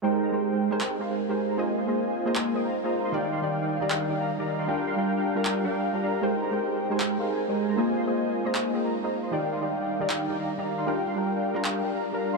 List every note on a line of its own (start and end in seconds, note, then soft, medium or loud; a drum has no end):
0.02 0.18 G#3 medium
0.02 0.20 G#3 medium
0.02 3.10 G#3 medium
0.02 3.10 C4 medium
0.02 0.20 D#4 medium
0.02 0.18 G4 medium
0.02 1.56 G4 medium
0.02 0.20 A#4 medium
0.02 4.64 A#4 medium
0.02 0.18 A#4 medium
0.02 0.20 C5 medium
0.02 0.19 C5 medium
0.02 0.20 G5 loud
0.22 0.30 G#3 medium
0.22 0.30 D#4 medium
0.22 0.30 A#4 medium
0.22 0.30 C5 medium
0.22 0.30 A#5 medium
0.32 0.47 G#3 medium
0.32 0.50 G#3 medium
0.32 0.50 D#4 medium
0.32 0.47 G4 medium
0.32 0.50 A#4 medium
0.32 0.47 A#4 medium
0.32 0.50 C5 medium
0.32 0.48 C5 medium
0.32 0.50 G5 medium
0.52 0.69 G#3 medium
0.52 0.69 D#4 medium
0.52 0.69 A#4 medium
0.52 0.69 C5 medium
0.52 0.69 G5 medium
0.70 0.97 G#3 medium
0.70 0.79 G#3 medium
0.70 0.79 D#4 medium
0.70 0.97 G4 medium
0.70 0.79 A#4 medium
0.70 0.98 A#4 medium
0.70 0.79 C5 medium
0.70 0.98 C5 loud
0.70 0.79 G#5 medium
0.81 0.98 G#3 medium
0.81 0.98 D#4 medium
0.81 0.98 A#4 medium
0.81 0.98 C5 medium
0.81 0.98 G5 medium
0.81 clap medium
0.99 1.09 G#3 medium
0.99 1.08 G#3 medium
0.99 1.08 D#4 medium
0.99 1.09 G4 medium
0.99 1.08 A#4 medium
0.99 1.10 A#4 medium
0.99 1.08 C5 medium
0.99 1.10 C5 medium
0.99 1.08 F5 medium
1.10 1.20 G#3 medium
1.10 1.20 D#4 medium
1.10 1.20 A#4 medium
1.10 1.20 C5 medium
1.10 1.20 G#5 medium
1.28 1.55 G#3 medium
1.28 1.46 G#3 medium
1.28 1.46 D#4 medium
1.28 1.56 G4 medium
1.28 1.46 A#4 medium
1.28 1.56 A#4 medium
1.28 1.46 C5 medium
1.28 1.56 C5 medium
1.28 1.46 G#5 medium
1.49 1.56 G#3 medium
1.49 1.56 D#4 medium
1.49 1.56 A#4 medium
1.49 1.56 C5 medium
1.49 1.56 A#5 medium
1.57 1.72 A#3 medium
1.57 1.75 A#3 medium
1.57 4.64 D#4 medium
1.57 1.75 F4 medium
1.57 1.73 G#4 medium
1.57 1.75 C5 medium
1.57 1.73 C5 medium
1.57 1.75 D#5 medium
1.57 1.73 D#5 medium
1.57 1.75 G#5 loud
1.77 1.85 A#3 medium
1.77 1.85 F4 medium
1.77 1.85 C5 medium
1.77 1.85 D#5 medium
1.77 1.85 C6 medium
1.87 2.02 A#3 medium
1.87 2.04 A#3 medium
1.87 2.04 F4 medium
1.87 2.02 G#4 medium
1.87 2.04 C5 medium
1.87 2.02 C5 medium
1.87 2.04 D#5 medium
1.87 2.03 D#5 medium
1.87 2.04 G#5 medium
2.07 2.24 A#3 medium
2.07 2.24 F4 medium
2.07 2.24 C5 medium
2.07 2.24 D#5 medium
2.07 2.24 G#5 medium
2.25 2.52 A#3 medium
2.25 2.34 A#3 medium
2.25 2.34 F4 medium
2.25 2.52 G#4 medium
2.25 2.34 C5 medium
2.25 2.53 C5 medium
2.25 2.34 D#5 medium
2.25 2.53 D#5 loud
2.25 2.34 A#5 medium
2.35 2.52 A#3 medium
2.35 2.52 F4 medium
2.35 2.52 C5 medium
2.35 2.52 D#5 medium
2.35 2.52 G#5 medium
2.35 clap medium
2.54 2.64 A#3 medium
2.54 2.62 A#3 medium
2.54 2.62 F4 medium
2.54 2.64 G#4 medium
2.54 2.62 C5 medium
2.54 2.65 C5 medium
2.54 2.62 D#5 medium
2.54 2.65 D#5 medium
2.54 2.62 G5 medium
2.65 2.75 A#3 medium
2.65 2.75 F4 medium
2.65 2.75 C5 medium
2.65 2.75 D#5 medium
2.65 2.75 A#5 medium
2.83 3.10 A#3 medium
2.83 3.01 A#3 medium
2.83 3.01 F4 medium
2.83 3.10 G#4 medium
2.83 3.01 C5 medium
2.83 3.11 C5 medium
2.83 3.01 D#5 medium
2.83 3.11 D#5 medium
2.83 3.01 A#5 medium
3.04 3.11 A#3 medium
3.04 3.11 F4 medium
3.04 3.11 C5 medium
3.04 3.11 D#5 medium
3.04 3.11 C6 medium
3.12 3.27 D#3 medium
3.12 3.30 D#3 medium
3.12 6.19 G3 medium
3.12 4.66 D4 medium
3.12 3.28 D#4 medium
3.12 3.30 D#4 medium
3.12 3.28 G4 medium
3.12 3.30 D5 medium
3.12 3.28 D5 loud
3.12 3.30 F5 medium
3.12 3.30 G5 loud
3.32 3.40 D#3 medium
3.32 3.40 D#4 medium
3.32 3.40 D5 medium
3.32 3.40 F5 medium
3.32 3.40 C6 medium
3.41 3.56 D#3 medium
3.41 3.59 D#3 medium
3.41 3.57 D#4 medium
3.41 3.59 D#4 medium
3.41 3.57 G4 medium
3.41 3.59 D5 medium
3.41 3.57 D5 medium
3.41 3.59 F5 medium
3.41 3.59 G5 medium
3.62 3.79 D#3 medium
3.62 3.79 D#4 medium
3.62 3.79 D5 medium
3.62 3.79 F5 medium
3.62 3.79 G5 medium
3.80 4.07 D#3 medium
3.80 3.89 D#3 medium
3.80 4.07 D#4 medium
3.80 3.89 D#4 medium
3.80 4.08 G4 medium
3.80 3.89 D5 medium
3.80 4.08 D5 loud
3.80 3.89 F5 medium
3.80 3.89 A#5 medium
3.90 4.07 D#3 medium
3.90 4.07 D#4 medium
3.90 4.07 D5 medium
3.90 4.07 F5 medium
3.90 4.07 G5 medium
3.90 clap medium
4.08 4.19 D#3 medium
4.08 4.17 D#3 medium
4.08 4.19 D#4 medium
4.08 4.17 D#4 medium
4.08 4.19 G4 medium
4.08 4.17 D5 medium
4.08 4.20 D5 medium
4.08 4.17 F5 medium
4.08 4.17 G5 medium
4.20 4.29 D#3 medium
4.20 4.29 D#4 medium
4.20 4.29 D5 medium
4.20 4.29 F5 medium
4.20 4.29 A#5 medium
4.38 4.65 D#3 medium
4.38 4.56 D#3 medium
4.38 4.65 D#4 medium
4.38 4.56 D#4 medium
4.38 4.65 G4 medium
4.38 4.56 D5 medium
4.38 4.66 D5 medium
4.38 4.56 F5 medium
4.38 4.56 A#5 medium
4.58 4.65 D#3 medium
4.58 4.65 D#4 medium
4.58 4.65 D5 medium
4.58 4.65 F5 medium
4.58 4.65 C6 medium
4.66 4.82 G3 medium
4.66 4.85 G3 medium
4.66 4.82 D4 medium
4.66 6.21 D4 medium
4.66 4.85 D4 medium
4.66 6.21 F4 medium
4.66 4.83 F4 medium
4.66 7.74 A#4 medium
4.66 4.85 A#4 medium
4.66 4.83 A#4 medium
4.66 4.85 F5 medium
4.66 4.85 G5 loud
4.87 4.95 G3 medium
4.87 4.95 D4 medium
4.87 4.95 A#4 medium
4.87 4.95 F5 medium
4.87 4.95 C6 medium
4.96 5.11 G3 medium
4.96 5.14 G3 medium
4.96 5.11 D4 medium
4.96 5.14 D4 medium
4.96 5.12 F4 medium
4.96 5.14 A#4 medium
4.96 5.12 A#4 medium
4.96 5.14 F5 medium
4.96 5.14 G5 medium
5.16 5.33 G3 medium
5.16 5.33 D4 medium
5.16 5.33 A#4 medium
5.16 5.33 F5 medium
5.16 5.33 G5 medium
5.35 5.62 G3 medium
5.35 5.44 G3 medium
5.35 5.62 D4 medium
5.35 5.44 D4 medium
5.35 5.62 F4 medium
5.35 5.44 A#4 medium
5.35 5.63 A#4 loud
5.35 5.44 F5 medium
5.35 5.44 A#5 medium
5.45 5.62 G3 medium
5.45 5.62 D4 medium
5.45 5.62 A#4 medium
5.45 5.62 F5 medium
5.45 5.62 G5 medium
5.45 clap medium
5.63 5.74 G3 medium
5.63 5.92 G3 medium
5.63 5.74 D4 medium
5.63 5.92 D4 medium
5.63 5.74 F4 medium
5.63 5.92 A#4 medium
5.63 5.75 A#4 medium
5.63 5.92 F5 medium
5.63 5.92 G5 loud
5.93 6.20 G3 medium
5.93 6.01 G3 medium
5.93 6.20 D4 medium
5.93 6.01 D4 medium
5.93 6.20 F4 medium
5.93 6.01 A#4 medium
5.93 6.21 A#4 medium
5.93 6.01 F5 medium
5.93 6.01 A#5 medium
6.03 6.20 G3 medium
6.03 6.20 D4 medium
6.03 6.20 A#4 medium
6.03 6.20 F5 medium
6.03 6.20 A#5 loud
6.21 6.37 G#3 medium
6.21 6.40 G#3 medium
6.21 9.29 G#3 medium
6.21 9.29 C4 medium
6.21 6.40 D#4 medium
6.21 6.37 G4 medium
6.21 7.76 G4 medium
6.21 6.37 A#4 medium
6.21 6.40 A#4 medium
6.21 6.40 C5 medium
6.21 6.38 C5 medium
6.21 6.40 G5 loud
6.42 6.50 G#3 medium
6.42 6.50 D#4 medium
6.42 6.50 A#4 medium
6.42 6.50 C5 medium
6.42 6.50 A#5 medium
6.51 6.66 G#3 medium
6.51 6.69 G#3 medium
6.51 6.69 D#4 medium
6.51 6.66 G4 medium
6.51 6.69 A#4 medium
6.51 6.67 A#4 medium
6.51 6.69 C5 medium
6.51 6.67 C5 medium
6.51 6.69 G5 medium
6.71 6.88 G#3 medium
6.71 6.88 D#4 medium
6.71 6.88 A#4 medium
6.71 6.88 C5 medium
6.71 6.88 G5 medium
6.90 7.16 G#3 medium
6.90 6.99 G#3 medium
6.90 6.99 D#4 medium
6.90 7.17 G4 medium
6.90 6.99 A#4 medium
6.90 7.17 A#4 medium
6.90 6.99 C5 medium
6.90 7.17 C5 loud
6.90 6.98 G#5 medium
7.00 7.17 G#3 medium
7.00 7.17 D#4 medium
7.00 7.17 A#4 medium
7.00 7.17 C5 medium
7.00 7.17 G5 medium
7.00 clap loud
7.18 7.28 G#3 medium
7.18 7.27 G#3 medium
7.18 7.27 D#4 medium
7.18 7.29 G4 medium
7.18 7.27 A#4 medium
7.18 7.29 A#4 medium
7.18 7.27 C5 medium
7.18 7.29 C5 medium
7.18 7.27 F5 medium
7.29 7.39 G#3 medium
7.29 7.39 D#4 medium
7.29 7.39 A#4 medium
7.29 7.39 C5 medium
7.29 7.39 G#5 medium
7.48 7.75 G#3 medium
7.48 7.66 G#3 medium
7.48 7.66 D#4 medium
7.48 7.75 G4 medium
7.48 7.66 A#4 medium
7.48 7.75 A#4 medium
7.48 7.66 C5 medium
7.48 7.76 C5 medium
7.48 7.66 G#5 medium
7.68 7.75 G#3 medium
7.68 7.75 D#4 medium
7.68 7.75 A#4 medium
7.68 7.75 C5 medium
7.68 7.75 A#5 medium
7.76 7.92 A#3 medium
7.76 7.94 A#3 medium
7.76 10.84 D#4 medium
7.76 7.94 F4 medium
7.76 7.92 G#4 medium
7.76 12.37 A#4 medium
7.76 7.94 C5 medium
7.76 7.92 C5 medium
7.76 7.94 D#5 medium
7.76 7.93 D#5 medium
7.76 7.94 G#5 loud
7.96 8.04 A#3 medium
7.96 8.04 F4 medium
7.96 8.04 C5 medium
7.96 8.04 D#5 medium
7.96 8.04 C6 medium
8.06 8.21 A#3 medium
8.06 8.24 A#3 medium
8.06 8.24 F4 medium
8.06 8.21 G#4 medium
8.06 8.24 C5 medium
8.06 8.21 C5 medium
8.06 8.24 D#5 medium
8.06 8.22 D#5 medium
8.06 8.24 G#5 medium
8.26 8.43 A#3 medium
8.26 8.43 F4 medium
8.26 8.43 C5 medium
8.26 8.43 D#5 medium
8.26 8.43 G#5 medium
8.44 8.71 A#3 medium
8.44 8.53 A#3 medium
8.44 8.53 F4 medium
8.44 8.72 G#4 medium
8.44 8.53 C5 medium
8.44 8.72 C5 medium
8.44 8.53 D#5 medium
8.44 8.72 D#5 loud
8.44 8.53 A#5 medium
8.55 8.72 A#3 medium
8.55 8.72 F4 medium
8.55 8.72 C5 medium
8.55 8.72 D#5 medium
8.55 8.72 G#5 medium
8.55 clap loud
8.73 8.83 A#3 medium
8.73 8.82 A#3 medium
8.73 8.82 F4 medium
8.73 8.84 G#4 medium
8.73 8.82 C5 medium
8.73 8.84 C5 medium
8.73 8.82 D#5 medium
8.73 8.84 D#5 medium
8.73 8.82 G5 medium
8.84 8.94 A#3 medium
8.84 8.94 F4 medium
8.84 8.94 C5 medium
8.84 8.94 D#5 medium
8.84 8.94 A#5 medium
9.03 9.29 A#3 medium
9.03 9.20 A#3 medium
9.03 9.20 F4 medium
9.03 9.30 G#4 medium
9.03 9.20 C5 medium
9.03 9.30 C5 medium
9.03 9.20 D#5 medium
9.03 9.30 D#5 medium
9.03 9.20 A#5 medium
9.23 9.30 A#3 medium
9.23 9.30 F4 medium
9.23 9.30 C5 medium
9.23 9.30 D#5 medium
9.23 9.30 C6 loud
9.31 9.47 D#3 medium
9.31 9.49 D#3 medium
9.31 12.37 G3 medium
9.31 10.85 D4 medium
9.31 9.47 D#4 medium
9.31 9.49 D#4 medium
9.31 9.47 G4 medium
9.31 9.49 D5 medium
9.31 9.48 D5 loud
9.31 9.49 F5 medium
9.31 9.49 G5 loud
9.51 9.59 D#3 medium
9.51 9.59 D#4 medium
9.51 9.59 D5 medium
9.51 9.59 F5 medium
9.51 9.59 C6 medium
9.61 9.76 D#3 medium
9.61 9.79 D#3 medium
9.61 9.76 D#4 medium
9.61 9.79 D#4 medium
9.61 9.76 G4 medium
9.61 9.79 D5 medium
9.61 9.77 D5 medium
9.61 9.79 F5 medium
9.61 9.79 G5 medium
9.81 9.98 D#3 medium
9.81 9.98 D#4 medium
9.81 9.98 D5 medium
9.81 9.98 F5 medium
9.81 9.98 G5 medium
9.99 10.26 D#3 medium
9.99 10.08 D#3 medium
9.99 10.26 D#4 medium
9.99 10.08 D#4 medium
9.99 10.27 G4 medium
9.99 10.08 D5 medium
9.99 10.27 D5 loud
9.99 10.08 F5 medium
9.99 10.08 A#5 medium
10.09 10.27 D#3 medium
10.09 10.27 D#4 medium
10.09 10.27 D5 medium
10.09 10.27 F5 medium
10.09 10.27 G5 medium
10.09 clap loud
10.28 10.38 D#3 medium
10.28 10.37 D#3 medium
10.28 10.39 D#4 medium
10.28 10.37 D#4 medium
10.28 10.39 G4 medium
10.28 10.37 D5 medium
10.28 10.39 D5 medium
10.28 10.37 F5 medium
10.28 10.37 G5 medium
10.39 10.49 D#3 medium
10.39 10.49 D#4 medium
10.39 10.49 D5 medium
10.39 10.49 F5 medium
10.39 10.49 A#5 medium
10.57 10.84 D#3 medium
10.57 10.75 D#3 medium
10.57 10.85 D#4 medium
10.57 10.75 D#4 medium
10.57 10.85 G4 medium
10.57 10.75 D5 medium
10.57 10.85 D5 medium
10.57 10.75 F5 medium
10.57 10.75 A#5 medium
10.78 10.85 D#3 medium
10.78 10.85 D#4 medium
10.78 10.85 D5 medium
10.78 10.85 F5 medium
10.78 10.85 C6 medium
10.86 11.01 G3 medium
10.86 11.04 G3 loud
10.86 11.02 D4 medium
10.86 11.04 D4 medium
10.86 12.37 D4 medium
10.86 12.37 F4 medium
10.86 11.02 F4 medium
10.86 11.04 A#4 medium
10.86 11.02 A#4 medium
10.86 11.04 F5 medium
10.86 11.04 G5 loud
11.06 11.14 G3 medium
11.06 11.14 D4 medium
11.06 11.14 A#4 medium
11.06 11.14 F5 medium
11.06 11.14 C6 medium
11.15 11.30 G3 medium
11.15 11.34 G3 medium
11.15 11.31 D4 medium
11.15 11.33 D4 medium
11.15 11.31 F4 medium
11.15 11.33 A#4 medium
11.15 11.31 A#4 medium
11.15 11.33 F5 medium
11.15 11.34 G5 medium
11.36 11.53 G3 medium
11.36 11.53 D4 medium
11.36 11.53 A#4 medium
11.36 11.53 F5 medium
11.36 11.53 G5 medium
11.54 11.81 G3 medium
11.54 11.63 G3 medium
11.54 11.81 D4 medium
11.54 11.63 D4 medium
11.54 11.82 F4 medium
11.54 11.63 A#4 medium
11.54 11.82 A#4 loud
11.54 11.63 F5 medium
11.54 11.63 A#5 medium
11.64 11.81 G3 medium
11.64 11.81 D4 medium
11.64 11.81 A#4 medium
11.64 11.81 F5 medium
11.64 11.81 G5 medium
11.64 clap loud
11.83 11.93 G3 medium
11.83 11.92 G3 medium
11.83 11.93 D4 medium
11.83 11.92 D4 medium
11.83 11.94 F4 medium
11.83 11.92 A#4 medium
11.83 11.94 A#4 medium
11.83 11.92 F5 medium
11.83 11.92 G5 medium
11.94 12.04 G3 medium
11.94 12.04 D4 medium
11.94 12.04 A#4 medium
11.94 12.04 F5 medium
11.94 12.04 A#5 medium
12.12 12.37 G3 medium
12.12 12.30 G3 medium
12.12 12.37 D4 medium
12.12 12.30 D4 medium
12.12 12.37 F4 medium
12.12 12.30 A#4 medium
12.12 12.37 A#4 medium
12.12 12.30 F5 medium
12.12 12.30 A#5 medium
12.33 12.37 G3 medium
12.33 12.37 D4 medium
12.33 12.37 A#4 medium
12.33 12.37 F5 medium
12.33 12.37 C6 medium